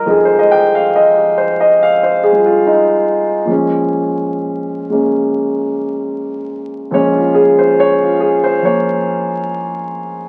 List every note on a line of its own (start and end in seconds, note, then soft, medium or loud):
0.00 2.32 G3 soft
0.00 2.33 C4 soft
0.00 2.35 F4 soft
0.00 3.51 A#4 medium
0.00 0.39 D#5 medium
0.00 0.75 F5 medium
0.06 3.49 F2 soft
0.06 3.46 F3 soft
0.06 3.47 G#3 soft
0.06 2.65 D#4 soft
0.10 0.26 G#4 medium
0.25 0.34 C5 medium
0.39 0.64 D#5 medium
0.51 0.71 G5 medium
0.75 0.90 F5 medium
0.95 1.21 D#5 medium
1.17 1.46 G4 medium
1.38 1.57 C5 medium
1.60 1.76 D#5 medium
1.83 2.07 F5 medium
2.03 2.32 C5 medium
2.23 2.43 G#4 medium
2.32 3.48 G3 soft
2.32 3.48 C4 soft
2.32 2.44 F4 soft
2.46 2.61 F4 medium
2.67 3.47 D#4 medium
3.45 6.89 A#2 soft
3.45 6.90 F3 soft
3.45 4.88 G#3 soft
3.50 4.91 C#4 medium
4.90 6.90 G#3 soft
4.90 6.91 A#3 soft
4.90 6.91 C#4 soft
6.91 10.29 A#2 medium
6.91 8.61 F3 soft
6.91 10.29 G#3 medium
6.91 10.29 C#4 medium
6.91 7.20 C#5 medium
7.16 7.45 F4 medium
7.35 7.55 G#4 medium
7.59 7.74 C5 medium
7.80 8.06 C#5 medium
8.02 8.31 F4 medium
8.20 8.41 G#4 medium
8.44 8.60 C5 medium
8.62 10.29 F3 soft
8.62 10.29 A#3 soft
8.62 10.29 C#5 medium